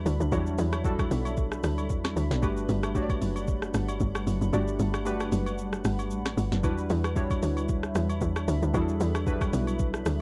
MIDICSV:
0, 0, Header, 1, 5, 480
1, 0, Start_track
1, 0, Tempo, 526316
1, 293, Time_signature, 4, 2, 24, 8
1, 9315, End_track
2, 0, Start_track
2, 0, Title_t, "Ambient pad"
2, 0, Program_c, 0, 92
2, 0, Note_on_c, 0, 55, 82
2, 0, Note_on_c, 0, 62, 81
2, 0, Note_on_c, 0, 76, 75
2, 0, Note_on_c, 0, 83, 93
2, 2176, Note_off_c, 0, 76, 0
2, 2215, Note_on_c, 0, 78, 76
2, 6016, Note_off_c, 0, 55, 0
2, 6016, Note_off_c, 0, 62, 0
2, 6017, Note_off_c, 0, 78, 0
2, 6017, Note_off_c, 0, 83, 0
2, 6053, Note_on_c, 0, 76, 79
2, 6054, Note_on_c, 0, 55, 87
2, 6054, Note_on_c, 0, 62, 78
2, 6054, Note_on_c, 0, 83, 94
2, 9315, Note_off_c, 0, 55, 0
2, 9315, Note_off_c, 0, 62, 0
2, 9315, Note_off_c, 0, 76, 0
2, 9315, Note_off_c, 0, 83, 0
2, 9315, End_track
3, 0, Start_track
3, 0, Title_t, "Synth keys"
3, 0, Program_c, 1, 88
3, 0, Control_c, 1, 64, 127
3, 0, Note_on_c, 1, 55, 91
3, 0, Note_on_c, 1, 62, 84
3, 0, Note_on_c, 1, 64, 85
3, 0, Note_on_c, 1, 66, 84
3, 0, Note_on_c, 1, 71, 97
3, 0, Note_on_c, 1, 74, 98
3, 285, Note_on_c, 1, 54, 70
3, 289, Note_off_c, 1, 62, 0
3, 289, Note_on_c, 1, 62, 81
3, 292, Note_off_c, 1, 64, 0
3, 292, Note_on_c, 1, 64, 83
3, 296, Note_off_c, 1, 66, 0
3, 296, Note_on_c, 1, 66, 82
3, 299, Note_on_c, 1, 73, 95
3, 343, Note_off_c, 1, 55, 0
3, 343, Note_on_c, 1, 55, 92
3, 352, Note_off_c, 1, 54, 0
3, 684, Note_off_c, 1, 62, 0
3, 686, Note_off_c, 1, 64, 0
3, 688, Note_off_c, 1, 66, 0
3, 690, Note_off_c, 1, 73, 0
3, 711, Note_off_c, 1, 55, 0
3, 766, Note_on_c, 1, 55, 92
3, 770, Note_on_c, 1, 62, 85
3, 773, Note_on_c, 1, 64, 80
3, 776, Note_on_c, 1, 66, 87
3, 780, Note_on_c, 1, 69, 99
3, 1542, Note_off_c, 1, 55, 0
3, 1544, Note_off_c, 1, 62, 0
3, 1545, Note_off_c, 1, 64, 0
3, 1547, Note_off_c, 1, 66, 0
3, 1549, Note_off_c, 1, 69, 0
3, 2206, Note_on_c, 1, 57, 88
3, 2210, Note_on_c, 1, 62, 80
3, 2212, Note_on_c, 1, 66, 85
3, 2216, Note_on_c, 1, 67, 81
3, 2220, Note_off_c, 1, 71, 0
3, 2220, Note_on_c, 1, 71, 103
3, 2223, Control_c, 1, 64, 0
3, 2228, Note_off_c, 1, 74, 0
3, 2399, Control_c, 1, 64, 127
3, 2603, Note_off_c, 1, 57, 0
3, 2605, Note_off_c, 1, 62, 0
3, 2606, Note_off_c, 1, 66, 0
3, 2608, Note_off_c, 1, 67, 0
3, 2610, Note_off_c, 1, 71, 0
3, 2687, Note_on_c, 1, 57, 91
3, 2690, Note_on_c, 1, 62, 83
3, 2693, Note_on_c, 1, 66, 88
3, 2697, Note_on_c, 1, 67, 80
3, 2701, Note_on_c, 1, 73, 82
3, 2758, Note_on_c, 1, 74, 97
3, 2760, Note_off_c, 1, 73, 0
3, 3462, Note_off_c, 1, 57, 0
3, 3464, Note_off_c, 1, 62, 0
3, 3466, Note_off_c, 1, 66, 0
3, 3468, Note_off_c, 1, 67, 0
3, 3498, Note_off_c, 1, 74, 0
3, 4127, Note_on_c, 1, 57, 91
3, 4131, Note_on_c, 1, 62, 85
3, 4134, Note_on_c, 1, 66, 81
3, 4137, Note_on_c, 1, 67, 84
3, 4141, Note_on_c, 1, 74, 99
3, 4524, Note_off_c, 1, 57, 0
3, 4525, Note_off_c, 1, 62, 0
3, 4527, Note_off_c, 1, 66, 0
3, 4529, Note_off_c, 1, 67, 0
3, 4530, Note_off_c, 1, 74, 0
3, 4607, Note_on_c, 1, 57, 89
3, 4610, Note_on_c, 1, 62, 86
3, 4613, Note_on_c, 1, 66, 80
3, 4617, Note_on_c, 1, 67, 83
3, 4620, Note_on_c, 1, 71, 102
3, 5382, Note_off_c, 1, 57, 0
3, 5384, Note_off_c, 1, 62, 0
3, 5386, Note_off_c, 1, 66, 0
3, 5387, Note_off_c, 1, 67, 0
3, 5389, Note_off_c, 1, 71, 0
3, 6046, Note_on_c, 1, 54, 72
3, 6049, Note_on_c, 1, 62, 84
3, 6053, Note_on_c, 1, 64, 82
3, 6056, Note_on_c, 1, 66, 84
3, 6060, Note_on_c, 1, 71, 99
3, 6065, Control_c, 1, 64, 0
3, 6103, Note_on_c, 1, 55, 87
3, 6113, Note_off_c, 1, 54, 0
3, 6213, Control_c, 1, 64, 127
3, 6444, Note_off_c, 1, 62, 0
3, 6446, Note_off_c, 1, 64, 0
3, 6448, Note_off_c, 1, 66, 0
3, 6450, Note_off_c, 1, 71, 0
3, 6472, Note_off_c, 1, 55, 0
3, 6525, Note_on_c, 1, 55, 92
3, 6529, Note_on_c, 1, 62, 83
3, 6532, Note_on_c, 1, 64, 85
3, 6535, Note_on_c, 1, 66, 82
3, 6539, Note_on_c, 1, 73, 102
3, 7302, Note_off_c, 1, 55, 0
3, 7303, Note_off_c, 1, 62, 0
3, 7305, Note_off_c, 1, 64, 0
3, 7307, Note_off_c, 1, 66, 0
3, 7309, Note_off_c, 1, 73, 0
3, 7966, Note_on_c, 1, 55, 90
3, 7969, Note_on_c, 1, 62, 85
3, 7973, Note_on_c, 1, 64, 81
3, 7976, Note_on_c, 1, 66, 82
3, 7979, Note_on_c, 1, 68, 80
3, 8037, Note_on_c, 1, 69, 95
3, 8039, Note_off_c, 1, 68, 0
3, 8363, Note_off_c, 1, 55, 0
3, 8364, Note_off_c, 1, 62, 0
3, 8366, Note_off_c, 1, 64, 0
3, 8368, Note_off_c, 1, 66, 0
3, 8398, Note_off_c, 1, 69, 0
3, 8446, Note_on_c, 1, 54, 74
3, 8450, Note_on_c, 1, 62, 82
3, 8453, Note_on_c, 1, 64, 88
3, 8456, Note_on_c, 1, 66, 82
3, 8460, Note_on_c, 1, 71, 105
3, 8504, Note_on_c, 1, 55, 93
3, 8513, Note_off_c, 1, 54, 0
3, 9224, Note_off_c, 1, 62, 0
3, 9226, Note_off_c, 1, 64, 0
3, 9227, Note_off_c, 1, 66, 0
3, 9229, Note_off_c, 1, 71, 0
3, 9251, Note_off_c, 1, 55, 0
3, 9315, End_track
4, 0, Start_track
4, 0, Title_t, "Log drum bass"
4, 0, Program_c, 2, 39
4, 52, Note_on_c, 2, 38, 104
4, 179, Note_off_c, 2, 38, 0
4, 184, Note_on_c, 2, 38, 90
4, 288, Note_off_c, 2, 38, 0
4, 293, Note_on_c, 2, 40, 112
4, 524, Note_off_c, 2, 40, 0
4, 533, Note_on_c, 2, 40, 108
4, 995, Note_off_c, 2, 40, 0
4, 1012, Note_on_c, 2, 35, 99
4, 1475, Note_off_c, 2, 35, 0
4, 1492, Note_on_c, 2, 38, 84
4, 1732, Note_on_c, 2, 40, 98
4, 1745, Note_off_c, 2, 38, 0
4, 1963, Note_off_c, 2, 40, 0
4, 1972, Note_on_c, 2, 38, 93
4, 2100, Note_off_c, 2, 38, 0
4, 2105, Note_on_c, 2, 35, 92
4, 2213, Note_on_c, 2, 31, 115
4, 2227, Note_off_c, 2, 35, 0
4, 2444, Note_off_c, 2, 31, 0
4, 2453, Note_on_c, 2, 31, 107
4, 2915, Note_off_c, 2, 31, 0
4, 2933, Note_on_c, 2, 30, 87
4, 3395, Note_off_c, 2, 30, 0
4, 3412, Note_on_c, 2, 31, 92
4, 3643, Note_off_c, 2, 31, 0
4, 3652, Note_on_c, 2, 31, 96
4, 3883, Note_off_c, 2, 31, 0
4, 3892, Note_on_c, 2, 30, 93
4, 4020, Note_off_c, 2, 30, 0
4, 4025, Note_on_c, 2, 30, 86
4, 4129, Note_off_c, 2, 30, 0
4, 4133, Note_on_c, 2, 31, 109
4, 4364, Note_off_c, 2, 31, 0
4, 4373, Note_on_c, 2, 31, 106
4, 4835, Note_off_c, 2, 31, 0
4, 4853, Note_on_c, 2, 30, 84
4, 5315, Note_off_c, 2, 30, 0
4, 5333, Note_on_c, 2, 31, 90
4, 5573, Note_on_c, 2, 33, 91
4, 5587, Note_off_c, 2, 31, 0
4, 5804, Note_off_c, 2, 33, 0
4, 5812, Note_on_c, 2, 31, 97
4, 5940, Note_off_c, 2, 31, 0
4, 5944, Note_on_c, 2, 30, 94
4, 6053, Note_on_c, 2, 40, 110
4, 6066, Note_off_c, 2, 30, 0
4, 6284, Note_off_c, 2, 40, 0
4, 6292, Note_on_c, 2, 40, 109
4, 6755, Note_off_c, 2, 40, 0
4, 6773, Note_on_c, 2, 38, 92
4, 7235, Note_off_c, 2, 38, 0
4, 7252, Note_on_c, 2, 40, 92
4, 7484, Note_off_c, 2, 40, 0
4, 7492, Note_on_c, 2, 40, 92
4, 7723, Note_off_c, 2, 40, 0
4, 7732, Note_on_c, 2, 38, 102
4, 7860, Note_off_c, 2, 38, 0
4, 7865, Note_on_c, 2, 38, 88
4, 7969, Note_off_c, 2, 38, 0
4, 7973, Note_on_c, 2, 40, 115
4, 8204, Note_off_c, 2, 40, 0
4, 8213, Note_on_c, 2, 40, 107
4, 8675, Note_off_c, 2, 40, 0
4, 8693, Note_on_c, 2, 35, 102
4, 9155, Note_off_c, 2, 35, 0
4, 9173, Note_on_c, 2, 38, 87
4, 9315, Note_off_c, 2, 38, 0
4, 9315, End_track
5, 0, Start_track
5, 0, Title_t, "Drums"
5, 55, Note_on_c, 9, 46, 52
5, 55, Note_on_c, 9, 82, 92
5, 146, Note_off_c, 9, 46, 0
5, 146, Note_off_c, 9, 82, 0
5, 186, Note_on_c, 9, 82, 54
5, 277, Note_off_c, 9, 82, 0
5, 292, Note_on_c, 9, 82, 82
5, 293, Note_on_c, 9, 36, 111
5, 295, Note_on_c, 9, 67, 65
5, 384, Note_off_c, 9, 36, 0
5, 384, Note_off_c, 9, 82, 0
5, 386, Note_off_c, 9, 67, 0
5, 424, Note_on_c, 9, 82, 55
5, 515, Note_off_c, 9, 82, 0
5, 532, Note_on_c, 9, 46, 45
5, 532, Note_on_c, 9, 82, 80
5, 623, Note_off_c, 9, 46, 0
5, 623, Note_off_c, 9, 82, 0
5, 663, Note_on_c, 9, 37, 100
5, 663, Note_on_c, 9, 67, 89
5, 665, Note_on_c, 9, 82, 57
5, 754, Note_off_c, 9, 67, 0
5, 755, Note_off_c, 9, 37, 0
5, 756, Note_off_c, 9, 82, 0
5, 770, Note_on_c, 9, 36, 108
5, 773, Note_on_c, 9, 82, 84
5, 862, Note_off_c, 9, 36, 0
5, 865, Note_off_c, 9, 82, 0
5, 902, Note_on_c, 9, 36, 97
5, 904, Note_on_c, 9, 67, 81
5, 905, Note_on_c, 9, 82, 55
5, 907, Note_on_c, 9, 37, 91
5, 993, Note_off_c, 9, 36, 0
5, 995, Note_off_c, 9, 67, 0
5, 996, Note_off_c, 9, 82, 0
5, 998, Note_off_c, 9, 37, 0
5, 1014, Note_on_c, 9, 46, 53
5, 1014, Note_on_c, 9, 82, 92
5, 1105, Note_off_c, 9, 46, 0
5, 1105, Note_off_c, 9, 82, 0
5, 1143, Note_on_c, 9, 67, 74
5, 1148, Note_on_c, 9, 82, 58
5, 1234, Note_off_c, 9, 67, 0
5, 1240, Note_off_c, 9, 82, 0
5, 1251, Note_on_c, 9, 82, 84
5, 1254, Note_on_c, 9, 36, 112
5, 1342, Note_off_c, 9, 82, 0
5, 1345, Note_off_c, 9, 36, 0
5, 1383, Note_on_c, 9, 37, 102
5, 1387, Note_on_c, 9, 82, 57
5, 1474, Note_off_c, 9, 37, 0
5, 1478, Note_off_c, 9, 82, 0
5, 1491, Note_on_c, 9, 46, 61
5, 1491, Note_on_c, 9, 82, 102
5, 1495, Note_on_c, 9, 37, 98
5, 1583, Note_off_c, 9, 46, 0
5, 1583, Note_off_c, 9, 82, 0
5, 1586, Note_off_c, 9, 37, 0
5, 1624, Note_on_c, 9, 67, 74
5, 1625, Note_on_c, 9, 82, 58
5, 1715, Note_off_c, 9, 67, 0
5, 1716, Note_off_c, 9, 82, 0
5, 1731, Note_on_c, 9, 82, 82
5, 1732, Note_on_c, 9, 36, 96
5, 1822, Note_off_c, 9, 82, 0
5, 1823, Note_off_c, 9, 36, 0
5, 1864, Note_on_c, 9, 67, 79
5, 1867, Note_on_c, 9, 37, 105
5, 1867, Note_on_c, 9, 38, 72
5, 1868, Note_on_c, 9, 82, 65
5, 1956, Note_off_c, 9, 67, 0
5, 1959, Note_off_c, 9, 37, 0
5, 1959, Note_off_c, 9, 38, 0
5, 1959, Note_off_c, 9, 82, 0
5, 1976, Note_on_c, 9, 46, 52
5, 1976, Note_on_c, 9, 82, 87
5, 2068, Note_off_c, 9, 46, 0
5, 2068, Note_off_c, 9, 82, 0
5, 2108, Note_on_c, 9, 82, 54
5, 2109, Note_on_c, 9, 38, 64
5, 2199, Note_off_c, 9, 82, 0
5, 2200, Note_off_c, 9, 38, 0
5, 2213, Note_on_c, 9, 36, 113
5, 2213, Note_on_c, 9, 82, 79
5, 2216, Note_on_c, 9, 67, 68
5, 2304, Note_off_c, 9, 36, 0
5, 2304, Note_off_c, 9, 82, 0
5, 2307, Note_off_c, 9, 67, 0
5, 2344, Note_on_c, 9, 82, 54
5, 2435, Note_off_c, 9, 82, 0
5, 2452, Note_on_c, 9, 46, 48
5, 2452, Note_on_c, 9, 82, 77
5, 2543, Note_off_c, 9, 46, 0
5, 2543, Note_off_c, 9, 82, 0
5, 2583, Note_on_c, 9, 37, 96
5, 2584, Note_on_c, 9, 67, 86
5, 2585, Note_on_c, 9, 82, 55
5, 2675, Note_off_c, 9, 37, 0
5, 2675, Note_off_c, 9, 67, 0
5, 2676, Note_off_c, 9, 82, 0
5, 2691, Note_on_c, 9, 36, 100
5, 2693, Note_on_c, 9, 82, 82
5, 2782, Note_off_c, 9, 36, 0
5, 2785, Note_off_c, 9, 82, 0
5, 2822, Note_on_c, 9, 36, 101
5, 2824, Note_on_c, 9, 82, 54
5, 2825, Note_on_c, 9, 67, 82
5, 2914, Note_off_c, 9, 36, 0
5, 2916, Note_off_c, 9, 82, 0
5, 2917, Note_off_c, 9, 67, 0
5, 2933, Note_on_c, 9, 46, 55
5, 2933, Note_on_c, 9, 82, 96
5, 3024, Note_off_c, 9, 46, 0
5, 3024, Note_off_c, 9, 82, 0
5, 3063, Note_on_c, 9, 67, 71
5, 3069, Note_on_c, 9, 82, 57
5, 3154, Note_off_c, 9, 67, 0
5, 3160, Note_off_c, 9, 82, 0
5, 3170, Note_on_c, 9, 82, 89
5, 3174, Note_on_c, 9, 36, 112
5, 3262, Note_off_c, 9, 82, 0
5, 3265, Note_off_c, 9, 36, 0
5, 3303, Note_on_c, 9, 37, 100
5, 3307, Note_on_c, 9, 82, 57
5, 3394, Note_off_c, 9, 37, 0
5, 3398, Note_off_c, 9, 82, 0
5, 3412, Note_on_c, 9, 46, 60
5, 3412, Note_on_c, 9, 82, 103
5, 3416, Note_on_c, 9, 37, 96
5, 3503, Note_off_c, 9, 46, 0
5, 3503, Note_off_c, 9, 82, 0
5, 3507, Note_off_c, 9, 37, 0
5, 3544, Note_on_c, 9, 67, 73
5, 3545, Note_on_c, 9, 82, 57
5, 3635, Note_off_c, 9, 67, 0
5, 3636, Note_off_c, 9, 82, 0
5, 3650, Note_on_c, 9, 82, 77
5, 3652, Note_on_c, 9, 36, 95
5, 3741, Note_off_c, 9, 82, 0
5, 3743, Note_off_c, 9, 36, 0
5, 3785, Note_on_c, 9, 67, 77
5, 3787, Note_on_c, 9, 37, 106
5, 3788, Note_on_c, 9, 82, 63
5, 3876, Note_off_c, 9, 67, 0
5, 3878, Note_off_c, 9, 37, 0
5, 3879, Note_off_c, 9, 82, 0
5, 3896, Note_on_c, 9, 46, 53
5, 3896, Note_on_c, 9, 82, 94
5, 3987, Note_off_c, 9, 46, 0
5, 3987, Note_off_c, 9, 82, 0
5, 4028, Note_on_c, 9, 82, 53
5, 4119, Note_off_c, 9, 82, 0
5, 4133, Note_on_c, 9, 82, 84
5, 4136, Note_on_c, 9, 67, 64
5, 4225, Note_off_c, 9, 82, 0
5, 4227, Note_off_c, 9, 67, 0
5, 4265, Note_on_c, 9, 82, 55
5, 4356, Note_off_c, 9, 82, 0
5, 4373, Note_on_c, 9, 46, 46
5, 4373, Note_on_c, 9, 82, 78
5, 4464, Note_off_c, 9, 46, 0
5, 4464, Note_off_c, 9, 82, 0
5, 4504, Note_on_c, 9, 37, 100
5, 4504, Note_on_c, 9, 67, 88
5, 4506, Note_on_c, 9, 82, 56
5, 4595, Note_off_c, 9, 67, 0
5, 4596, Note_off_c, 9, 37, 0
5, 4597, Note_off_c, 9, 82, 0
5, 4614, Note_on_c, 9, 82, 82
5, 4705, Note_off_c, 9, 82, 0
5, 4744, Note_on_c, 9, 82, 54
5, 4746, Note_on_c, 9, 67, 84
5, 4747, Note_on_c, 9, 37, 93
5, 4836, Note_off_c, 9, 82, 0
5, 4837, Note_off_c, 9, 67, 0
5, 4838, Note_off_c, 9, 37, 0
5, 4854, Note_on_c, 9, 46, 57
5, 4854, Note_on_c, 9, 82, 95
5, 4945, Note_off_c, 9, 46, 0
5, 4945, Note_off_c, 9, 82, 0
5, 4983, Note_on_c, 9, 67, 79
5, 4989, Note_on_c, 9, 82, 55
5, 5074, Note_off_c, 9, 67, 0
5, 5080, Note_off_c, 9, 82, 0
5, 5091, Note_on_c, 9, 82, 85
5, 5183, Note_off_c, 9, 82, 0
5, 5224, Note_on_c, 9, 37, 96
5, 5227, Note_on_c, 9, 82, 59
5, 5315, Note_off_c, 9, 37, 0
5, 5318, Note_off_c, 9, 82, 0
5, 5332, Note_on_c, 9, 46, 62
5, 5332, Note_on_c, 9, 82, 101
5, 5336, Note_on_c, 9, 37, 97
5, 5423, Note_off_c, 9, 46, 0
5, 5423, Note_off_c, 9, 82, 0
5, 5427, Note_off_c, 9, 37, 0
5, 5464, Note_on_c, 9, 67, 74
5, 5465, Note_on_c, 9, 82, 54
5, 5555, Note_off_c, 9, 67, 0
5, 5556, Note_off_c, 9, 82, 0
5, 5569, Note_on_c, 9, 82, 75
5, 5661, Note_off_c, 9, 82, 0
5, 5704, Note_on_c, 9, 67, 75
5, 5707, Note_on_c, 9, 37, 104
5, 5707, Note_on_c, 9, 38, 73
5, 5707, Note_on_c, 9, 82, 63
5, 5795, Note_off_c, 9, 67, 0
5, 5798, Note_off_c, 9, 37, 0
5, 5798, Note_off_c, 9, 38, 0
5, 5799, Note_off_c, 9, 82, 0
5, 5816, Note_on_c, 9, 46, 54
5, 5816, Note_on_c, 9, 82, 92
5, 5907, Note_off_c, 9, 46, 0
5, 5907, Note_off_c, 9, 82, 0
5, 5946, Note_on_c, 9, 82, 53
5, 5947, Note_on_c, 9, 38, 61
5, 6038, Note_off_c, 9, 38, 0
5, 6038, Note_off_c, 9, 82, 0
5, 6052, Note_on_c, 9, 82, 86
5, 6053, Note_on_c, 9, 36, 112
5, 6055, Note_on_c, 9, 67, 67
5, 6144, Note_off_c, 9, 36, 0
5, 6144, Note_off_c, 9, 82, 0
5, 6147, Note_off_c, 9, 67, 0
5, 6183, Note_on_c, 9, 82, 53
5, 6275, Note_off_c, 9, 82, 0
5, 6291, Note_on_c, 9, 46, 47
5, 6291, Note_on_c, 9, 82, 80
5, 6382, Note_off_c, 9, 46, 0
5, 6382, Note_off_c, 9, 82, 0
5, 6423, Note_on_c, 9, 37, 100
5, 6423, Note_on_c, 9, 67, 86
5, 6424, Note_on_c, 9, 82, 55
5, 6514, Note_off_c, 9, 37, 0
5, 6515, Note_off_c, 9, 67, 0
5, 6516, Note_off_c, 9, 82, 0
5, 6530, Note_on_c, 9, 36, 100
5, 6533, Note_on_c, 9, 82, 84
5, 6622, Note_off_c, 9, 36, 0
5, 6624, Note_off_c, 9, 82, 0
5, 6662, Note_on_c, 9, 36, 102
5, 6664, Note_on_c, 9, 67, 83
5, 6664, Note_on_c, 9, 82, 55
5, 6753, Note_off_c, 9, 36, 0
5, 6755, Note_off_c, 9, 82, 0
5, 6756, Note_off_c, 9, 67, 0
5, 6773, Note_on_c, 9, 46, 54
5, 6773, Note_on_c, 9, 82, 88
5, 6864, Note_off_c, 9, 46, 0
5, 6864, Note_off_c, 9, 82, 0
5, 6902, Note_on_c, 9, 67, 74
5, 6908, Note_on_c, 9, 82, 56
5, 6993, Note_off_c, 9, 67, 0
5, 7000, Note_off_c, 9, 82, 0
5, 7010, Note_on_c, 9, 82, 85
5, 7014, Note_on_c, 9, 36, 114
5, 7101, Note_off_c, 9, 82, 0
5, 7105, Note_off_c, 9, 36, 0
5, 7143, Note_on_c, 9, 37, 99
5, 7146, Note_on_c, 9, 82, 57
5, 7234, Note_off_c, 9, 37, 0
5, 7238, Note_off_c, 9, 82, 0
5, 7252, Note_on_c, 9, 46, 59
5, 7252, Note_on_c, 9, 82, 103
5, 7255, Note_on_c, 9, 37, 96
5, 7343, Note_off_c, 9, 46, 0
5, 7343, Note_off_c, 9, 82, 0
5, 7346, Note_off_c, 9, 37, 0
5, 7383, Note_on_c, 9, 67, 73
5, 7385, Note_on_c, 9, 82, 57
5, 7474, Note_off_c, 9, 67, 0
5, 7476, Note_off_c, 9, 82, 0
5, 7490, Note_on_c, 9, 82, 80
5, 7492, Note_on_c, 9, 36, 95
5, 7581, Note_off_c, 9, 82, 0
5, 7583, Note_off_c, 9, 36, 0
5, 7624, Note_on_c, 9, 67, 79
5, 7626, Note_on_c, 9, 37, 102
5, 7627, Note_on_c, 9, 82, 64
5, 7715, Note_off_c, 9, 67, 0
5, 7717, Note_off_c, 9, 37, 0
5, 7718, Note_off_c, 9, 82, 0
5, 7735, Note_on_c, 9, 46, 53
5, 7735, Note_on_c, 9, 82, 92
5, 7826, Note_off_c, 9, 46, 0
5, 7826, Note_off_c, 9, 82, 0
5, 7867, Note_on_c, 9, 82, 55
5, 7958, Note_off_c, 9, 82, 0
5, 7973, Note_on_c, 9, 36, 105
5, 7973, Note_on_c, 9, 82, 86
5, 7975, Note_on_c, 9, 67, 65
5, 8064, Note_off_c, 9, 36, 0
5, 8064, Note_off_c, 9, 82, 0
5, 8066, Note_off_c, 9, 67, 0
5, 8104, Note_on_c, 9, 82, 57
5, 8195, Note_off_c, 9, 82, 0
5, 8213, Note_on_c, 9, 46, 48
5, 8213, Note_on_c, 9, 82, 80
5, 8304, Note_off_c, 9, 46, 0
5, 8304, Note_off_c, 9, 82, 0
5, 8344, Note_on_c, 9, 37, 100
5, 8344, Note_on_c, 9, 67, 84
5, 8345, Note_on_c, 9, 82, 58
5, 8435, Note_off_c, 9, 37, 0
5, 8435, Note_off_c, 9, 67, 0
5, 8436, Note_off_c, 9, 82, 0
5, 8451, Note_on_c, 9, 36, 104
5, 8453, Note_on_c, 9, 82, 86
5, 8542, Note_off_c, 9, 36, 0
5, 8545, Note_off_c, 9, 82, 0
5, 8582, Note_on_c, 9, 36, 99
5, 8584, Note_on_c, 9, 67, 85
5, 8585, Note_on_c, 9, 82, 55
5, 8587, Note_on_c, 9, 37, 93
5, 8674, Note_off_c, 9, 36, 0
5, 8675, Note_off_c, 9, 67, 0
5, 8676, Note_off_c, 9, 82, 0
5, 8678, Note_off_c, 9, 37, 0
5, 8694, Note_on_c, 9, 46, 56
5, 8694, Note_on_c, 9, 82, 92
5, 8785, Note_off_c, 9, 46, 0
5, 8785, Note_off_c, 9, 82, 0
5, 8822, Note_on_c, 9, 67, 76
5, 8829, Note_on_c, 9, 82, 58
5, 8913, Note_off_c, 9, 67, 0
5, 8920, Note_off_c, 9, 82, 0
5, 8931, Note_on_c, 9, 82, 87
5, 8934, Note_on_c, 9, 36, 120
5, 9022, Note_off_c, 9, 82, 0
5, 9025, Note_off_c, 9, 36, 0
5, 9064, Note_on_c, 9, 37, 102
5, 9067, Note_on_c, 9, 82, 58
5, 9155, Note_off_c, 9, 37, 0
5, 9158, Note_off_c, 9, 82, 0
5, 9172, Note_on_c, 9, 46, 61
5, 9172, Note_on_c, 9, 82, 106
5, 9176, Note_on_c, 9, 37, 103
5, 9263, Note_off_c, 9, 46, 0
5, 9263, Note_off_c, 9, 82, 0
5, 9267, Note_off_c, 9, 37, 0
5, 9315, End_track
0, 0, End_of_file